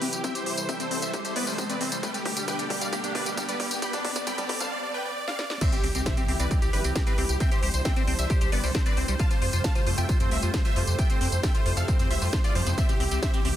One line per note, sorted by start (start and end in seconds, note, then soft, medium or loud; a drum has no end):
0.00 0.08 C2 medium
0.00 1.99 C3 medium
0.00 2.00 E3 medium
0.00 1.99 G3 medium
0.00 0.08 C4 medium
0.00 2.00 E4 medium
0.00 0.22 G4 medium
0.00 0.10 G4 medium
0.00 open hi-hat loud
0.00 riser medium
0.13 0.20 C2 medium
0.13 0.21 G4 medium
0.13 closed hi-hat medium
0.13 tambourine medium
0.24 0.34 C4 medium
0.24 2.01 A4 medium
0.24 0.32 E5 medium
0.24 0.32 G5 loud
0.24 kick loud
0.24 closed hi-hat medium
0.24 tambourine medium
0.35 0.45 G4 loud
0.35 0.44 C5 medium
0.35 closed hi-hat medium
0.35 tambourine soft
0.46 0.53 C2 medium
0.46 0.53 G4 loud
0.46 0.55 C5 medium
0.46 open hi-hat loud
0.58 0.64 C2 medium
0.58 0.66 C5 medium
0.58 closed hi-hat medium
0.58 tambourine medium
0.69 0.75 C4 medium
0.69 0.77 E5 medium
0.69 0.77 G5 medium
0.69 kick loud
0.69 closed hi-hat medium
0.69 tambourine medium
0.80 0.86 C4 loud
0.80 0.88 C5 medium
0.80 closed hi-hat medium
0.80 tambourine soft
0.91 0.98 C2 medium
0.91 0.98 C4 medium
0.91 1.00 C5 medium
0.91 open hi-hat loud
1.02 1.09 C2 medium
1.02 1.11 C5 medium
1.02 1.11 E5 medium
1.02 closed hi-hat medium
1.02 tambourine medium
1.13 1.23 G4 medium
1.13 1.22 C5 medium
1.13 kick loud
1.13 closed hi-hat medium
1.13 tambourine medium
1.25 1.32 C2 medium
1.25 1.35 G4 loud
1.25 1.33 C5 medium
1.25 closed hi-hat medium
1.25 tambourine soft
1.36 1.43 G1 medium
1.36 1.46 B3 medium
1.36 1.44 B4 medium
1.36 1.44 D5 medium
1.36 open hi-hat loud
1.47 1.54 C2 medium
1.47 1.54 G3 medium
1.47 1.56 C5 medium
1.47 tambourine medium
1.58 1.65 C4 medium
1.58 1.67 C5 medium
1.58 kick loud
1.58 closed hi-hat medium
1.58 tambourine medium
1.69 1.76 C4 medium
1.69 1.78 B4 medium
1.69 1.78 D5 medium
1.69 closed hi-hat medium
1.69 tambourine soft
1.81 1.88 C2 medium
1.81 1.90 C4 medium
1.81 1.89 C5 medium
1.81 open hi-hat medium
1.92 1.99 C2 medium
1.92 1.98 G3 medium
1.92 2.00 C5 medium
1.92 closed hi-hat medium
1.92 tambourine medium
2.03 4.69 B2 medium
2.03 4.69 D3 medium
2.03 2.13 G3 medium
2.03 4.69 G3 medium
2.03 4.69 D4 medium
2.03 3.80 G4 medium
2.03 2.11 B4 medium
2.03 2.11 G5 loud
2.03 kick loud
2.03 closed hi-hat medium
2.03 tambourine medium
2.14 2.18 G3 medium
2.14 2.23 G4 medium
2.14 closed hi-hat medium
2.14 tambourine soft
2.25 2.32 B1 medium
2.25 2.29 G4 medium
2.25 2.34 G4 medium
2.25 kick loud
2.25 open hi-hat loud
2.37 2.44 B1 medium
2.37 2.46 G3 medium
2.37 2.45 G4 medium
2.37 closed hi-hat medium
2.37 tambourine medium
2.48 2.56 B4 medium
2.48 2.56 G5 medium
2.48 kick loud
2.48 closed hi-hat medium
2.48 tambourine medium
2.59 2.66 G3 loud
2.59 2.67 G4 medium
2.59 closed hi-hat medium
2.59 tambourine soft
2.70 2.77 B1 medium
2.70 2.74 G3 medium
2.70 2.79 G4 medium
2.70 kick loud
2.70 open hi-hat loud
2.81 2.88 B1 medium
2.81 2.88 G3 medium
2.81 2.90 D5 medium
2.81 2.90 F5 medium
2.81 closed hi-hat medium
2.81 tambourine medium
2.93 3.02 G4 medium
2.93 3.01 G4 medium
2.93 kick loud
2.93 closed hi-hat medium
2.93 tambourine medium
3.04 3.11 B1 medium
3.04 3.14 D4 loud
3.04 3.12 G4 medium
3.04 closed hi-hat medium
3.04 tambourine soft
3.15 3.22 A1 medium
3.15 3.22 D4 loud
3.15 3.23 B4 medium
3.15 3.23 D5 medium
3.15 kick loud
3.15 open hi-hat loud
3.26 3.33 B1 medium
3.26 3.36 G3 medium
3.26 3.35 G4 medium
3.26 closed hi-hat medium
3.26 tambourine medium
3.37 3.44 G3 medium
3.37 3.46 G4 medium
3.37 kick loud
3.37 closed hi-hat medium
3.37 tambourine medium
3.48 3.55 G3 loud
3.48 3.57 B4 medium
3.48 3.57 D5 loud
3.48 closed hi-hat medium
3.48 tambourine soft
3.60 3.67 B1 medium
3.60 3.66 G4 medium
3.60 3.68 G4 medium
3.60 kick loud
3.60 open hi-hat loud
3.71 3.78 B1 medium
3.71 3.79 G4 medium
3.71 closed hi-hat medium
3.71 tambourine medium
3.82 3.92 G4 medium
3.82 4.71 A4 medium
3.82 3.91 G5 medium
3.82 3.91 B5 loud
3.82 kick loud
3.82 closed hi-hat medium
3.82 tambourine medium
3.93 4.03 D4 loud
3.93 4.02 D5 medium
3.93 kick loud
3.93 closed hi-hat medium
3.93 tambourine soft
4.04 4.11 B1 loud
4.04 4.11 D4 loud
4.04 4.13 D5 medium
4.04 kick loud
4.04 open hi-hat loud
4.16 4.23 B1 medium
4.16 4.24 D5 medium
4.16 kick loud
4.16 closed hi-hat medium
4.16 tambourine medium
4.27 4.33 G3 medium
4.27 4.35 G5 medium
4.27 4.35 B5 loud
4.27 kick loud
4.27 closed hi-hat medium
4.27 tambourine medium
4.38 4.45 G3 loud
4.38 4.47 D5 medium
4.38 kick medium
4.38 closed hi-hat medium
4.38 tambourine soft
4.49 4.56 B1 medium
4.49 4.56 G4 medium
4.49 4.58 D5 medium
4.49 kick loud
4.49 open hi-hat loud
4.60 4.67 B1 medium
4.60 4.69 F5 medium
4.60 4.69 A5 loud
4.60 kick medium
4.60 closed hi-hat medium
4.60 tambourine medium
4.72 4.80 D5 medium
4.83 4.91 D5 medium
4.94 5.03 B4 medium
4.94 5.03 G5 medium
5.05 5.14 D5 medium
5.16 5.25 D5 medium
5.28 5.36 D5 medium
5.28 5.36 F5 medium
5.28 snare medium
5.39 5.47 D5 medium
5.39 snare medium
5.50 5.58 D5 medium
5.50 snare medium
5.61 13.56 C3 medium
5.61 9.16 E3 medium
5.61 12.74 G3 medium
5.61 5.71 C4 medium
5.61 7.39 E4 medium
5.61 13.56 G4 medium
5.61 5.70 C5 medium
5.61 5.70 E5 loud
5.61 kick loud
5.61 closed hi-hat medium
5.61 crash loud
5.61 tambourine medium
5.61 impact medium
5.72 5.76 C4 medium
5.72 5.81 G4 medium
5.72 closed hi-hat medium
5.72 tambourine soft
5.84 5.91 C2 medium
5.84 5.88 C4 medium
5.84 5.92 G4 medium
5.84 open hi-hat loud
5.95 6.02 C2 medium
5.95 6.05 C4 medium
5.95 6.03 G4 medium
5.95 closed hi-hat medium
5.95 tambourine medium
6.06 6.14 C5 medium
6.06 6.14 E5 medium
6.06 6.15 E5 loud
6.06 kick loud
6.06 snare loud
6.06 closed hi-hat medium
6.06 tambourine medium
6.17 6.24 C4 loud
6.17 6.26 G4 medium
6.17 closed hi-hat medium
6.17 tambourine soft
6.28 6.35 C2 medium
6.28 6.32 C4 medium
6.28 6.37 G4 medium
6.28 open hi-hat loud
6.40 6.47 C2 medium
6.40 6.46 C4 medium
6.40 6.48 B4 medium
6.40 6.48 D5 medium
6.40 closed hi-hat medium
6.40 tambourine medium
6.51 6.61 C4 medium
6.51 6.59 G4 medium
6.51 kick loud
6.51 closed hi-hat medium
6.51 tambourine soft
6.62 6.69 C2 medium
6.62 6.72 G4 loud
6.62 6.70 G4 medium
6.62 closed hi-hat medium
6.62 tambourine soft
6.73 6.80 G1 medium
6.73 6.82 G4 medium
6.73 6.80 G4 loud
6.73 6.82 B4 medium
6.73 open hi-hat loud
6.84 6.91 C2 medium
6.84 6.94 C4 medium
6.84 6.93 G4 medium
6.84 closed hi-hat medium
6.84 tambourine medium
6.96 7.02 C4 medium
6.96 7.04 G4 medium
6.96 kick loud
6.96 snare loud
6.96 closed hi-hat medium
6.96 tambourine medium
7.07 7.13 C4 loud
7.07 7.15 G4 medium
7.07 7.15 B4 loud
7.07 7.15 B4 medium
7.07 closed hi-hat medium
7.07 tambourine soft
7.18 7.25 C2 medium
7.18 7.25 C4 medium
7.18 7.26 G4 medium
7.18 open hi-hat loud
7.29 7.36 C2 medium
7.29 7.38 G4 medium
7.29 closed hi-hat medium
7.29 tambourine medium
7.40 7.50 C4 medium
7.40 9.18 D4 medium
7.40 7.49 E5 medium
7.40 7.49 G5 loud
7.40 kick loud
7.40 closed hi-hat medium
7.40 tambourine medium
7.51 7.61 G4 loud
7.51 7.60 C5 medium
7.51 closed hi-hat medium
7.51 tambourine soft
7.63 7.70 C2 medium
7.63 7.69 G4 loud
7.63 7.71 C5 medium
7.63 open hi-hat loud
7.74 7.81 C2 medium
7.74 7.82 C5 medium
7.74 closed hi-hat medium
7.74 tambourine medium
7.85 7.92 C4 medium
7.85 7.94 E5 medium
7.85 7.94 G5 medium
7.85 7.94 G5 loud
7.85 kick loud
7.85 snare loud
7.85 closed hi-hat medium
7.85 tambourine medium
7.96 8.03 C4 loud
7.96 8.05 C5 medium
7.96 closed hi-hat medium
7.96 tambourine soft
8.07 8.14 C2 medium
8.07 8.14 C4 medium
8.07 8.16 C5 medium
8.07 open hi-hat loud
8.19 8.26 C2 medium
8.19 8.27 C5 medium
8.19 8.27 E5 medium
8.19 8.27 E5 loud
8.19 closed hi-hat medium
8.19 tambourine medium
8.30 8.40 G4 medium
8.30 8.38 C5 medium
8.30 kick loud
8.30 closed hi-hat medium
8.30 tambourine soft
8.41 8.48 C2 medium
8.41 8.51 G4 loud
8.41 8.50 C5 medium
8.41 closed hi-hat medium
8.41 tambourine soft
8.52 8.59 G1 medium
8.52 8.62 B3 medium
8.52 8.61 B4 medium
8.52 8.61 D5 medium
8.52 8.61 D5 loud
8.52 open hi-hat loud
8.63 8.70 C2 medium
8.63 8.70 G3 medium
8.63 8.72 C5 medium
8.63 open hi-hat medium
8.63 tambourine medium
8.75 8.81 C4 medium
8.75 8.83 C5 medium
8.75 kick loud
8.75 snare loud
8.75 closed hi-hat medium
8.75 tambourine soft
8.86 8.92 C4 medium
8.86 8.94 B4 medium
8.86 8.94 D5 medium
8.86 8.94 D5 loud
8.86 closed hi-hat medium
8.86 tambourine soft
8.97 9.04 C2 loud
8.97 9.07 C4 medium
8.97 9.06 C5 medium
8.97 open hi-hat loud
9.08 9.15 C2 medium
9.08 9.15 G3 medium
9.08 9.17 C5 medium
9.08 closed hi-hat medium
9.08 tambourine medium
9.19 12.74 A3 medium
9.19 10.97 F4 medium
9.19 9.29 F4 medium
9.19 9.28 F5 medium
9.19 9.28 A5 loud
9.19 9.28 A5 medium
9.19 kick loud
9.19 closed hi-hat medium
9.19 tambourine soft
9.31 9.35 F4 medium
9.31 9.39 C5 medium
9.31 closed hi-hat medium
9.31 tambourine soft
9.42 9.49 F2 medium
9.42 9.46 F4 medium
9.42 9.50 C5 medium
9.42 open hi-hat loud
9.53 9.60 F2 medium
9.53 9.63 F4 medium
9.53 9.62 C5 medium
9.53 closed hi-hat medium
9.53 tambourine medium
9.64 9.73 F5 medium
9.64 9.73 A5 medium
9.64 9.73 A5 loud
9.64 kick loud
9.64 snare loud
9.64 closed hi-hat medium
9.64 tambourine medium
9.75 9.82 F4 loud
9.75 9.84 C5 medium
9.75 closed hi-hat medium
9.75 tambourine soft
9.87 9.94 F2 medium
9.87 9.91 F4 medium
9.87 9.95 C5 medium
9.87 open hi-hat loud
9.98 10.05 F2 medium
9.98 10.04 F4 medium
9.98 10.06 E5 medium
9.98 10.06 G5 loud
9.98 10.06 G5 medium
9.98 closed hi-hat medium
9.98 tambourine medium
10.09 10.19 F4 medium
10.09 10.17 C5 medium
10.09 kick loud
10.09 closed hi-hat medium
10.09 tambourine soft
10.20 10.27 F2 medium
10.20 10.30 C4 loud
10.20 10.29 C5 medium
10.20 closed hi-hat medium
10.20 tambourine soft
10.31 10.38 C2 medium
10.31 10.38 C4 loud
10.31 10.40 C5 medium
10.31 10.40 E5 loud
10.31 10.40 E5 medium
10.31 open hi-hat loud
10.43 10.49 F2 medium
10.43 10.53 F4 medium
10.43 10.51 C5 medium
10.43 closed hi-hat medium
10.43 tambourine medium
10.54 10.60 F4 medium
10.54 10.62 C5 medium
10.54 kick loud
10.54 snare loud
10.54 closed hi-hat medium
10.54 tambourine medium
10.65 10.72 F4 loud
10.65 10.73 C5 medium
10.65 10.73 E5 loud
10.65 closed hi-hat medium
10.65 tambourine soft
10.76 10.83 F2 medium
10.76 10.83 F4 medium
10.76 10.85 C5 medium
10.76 open hi-hat loud
10.87 10.94 F2 medium
10.87 10.96 C5 medium
10.87 closed hi-hat medium
10.87 tambourine medium
10.99 13.56 E4 medium
10.99 11.08 F4 medium
10.99 11.07 E5 medium
10.99 11.07 G5 loud
10.99 11.07 G5 medium
10.99 kick loud
10.99 closed hi-hat medium
10.99 tambourine medium
11.10 11.20 C4 loud
11.10 11.18 C5 medium
11.10 closed hi-hat medium
11.10 tambourine soft
11.21 11.28 F2 loud
11.21 11.28 C4 loud
11.21 11.29 C5 medium
11.21 open hi-hat loud
11.32 11.39 F2 medium
11.32 11.41 C5 medium
11.32 closed hi-hat medium
11.32 tambourine medium
11.43 11.50 F4 medium
11.43 11.52 E5 medium
11.43 11.52 G5 loud
11.43 kick loud
11.43 snare loud
11.43 closed hi-hat medium
11.43 tambourine medium
11.55 11.61 F4 loud
11.55 11.63 C5 medium
11.55 closed hi-hat medium
11.55 tambourine soft
11.66 11.73 F2 loud
11.66 11.72 F4 medium
11.66 11.74 C5 medium
11.66 open hi-hat loud
11.77 11.84 F2 medium
11.77 11.85 A4 medium
11.77 11.85 F5 medium
11.77 11.85 F5 loud
11.77 closed hi-hat medium
11.77 tambourine medium
11.88 11.98 C4 medium
11.88 11.97 C5 medium
11.88 kick loud
11.88 closed hi-hat medium
11.88 tambourine medium
11.99 12.06 F2 medium
11.99 12.09 C4 loud
11.99 12.08 C5 medium
11.99 closed hi-hat medium
11.99 tambourine soft
12.10 12.17 C2 medium
12.10 12.14 F4 loud
12.10 12.19 C5 medium
12.10 12.19 E5 medium
12.10 open hi-hat loud
12.22 12.29 F2 medium
12.22 12.28 F4 medium
12.22 12.30 C5 medium
12.22 open hi-hat medium
12.22 tambourine medium
12.33 12.39 F4 medium
12.33 12.41 C5 medium
12.33 kick loud
12.33 snare loud
12.33 closed hi-hat medium
12.33 tambourine medium
12.44 12.54 F4 medium
12.44 12.53 F4 medium
12.44 12.53 D5 medium
12.44 12.53 D5 loud
12.44 closed hi-hat medium
12.44 tambourine soft
12.55 12.62 F2 medium
12.55 12.62 F3 loud
12.55 12.64 C5 medium
12.55 open hi-hat loud
12.66 12.73 F2 medium
12.66 12.70 B3 medium
12.66 12.75 C5 medium
12.66 closed hi-hat medium
12.66 tambourine medium
12.78 13.56 E3 medium
12.78 13.56 G3 medium
12.78 12.88 C4 medium
12.78 12.86 C5 medium
12.78 12.86 E5 loud
12.78 kick loud
12.78 closed hi-hat medium
12.78 tambourine medium
12.89 12.93 C4 medium
12.89 12.97 G4 medium
12.89 closed hi-hat medium
12.89 tambourine soft
13.00 13.07 C2 medium
13.00 13.04 C4 medium
13.00 13.09 G4 medium
13.00 open hi-hat loud
13.11 13.18 C2 medium
13.11 13.21 C4 medium
13.11 13.20 G4 medium
13.11 closed hi-hat medium
13.11 tambourine medium
13.23 13.31 C5 medium
13.23 13.31 E5 loud
13.23 13.31 E5 medium
13.23 kick loud
13.23 snare loud
13.23 closed hi-hat medium
13.23 tambourine medium
13.34 13.40 C4 loud
13.34 13.42 G4 medium
13.34 closed hi-hat medium
13.34 tambourine soft
13.45 13.52 C2 medium
13.45 13.49 C4 medium
13.45 13.53 G4 medium
13.45 open hi-hat loud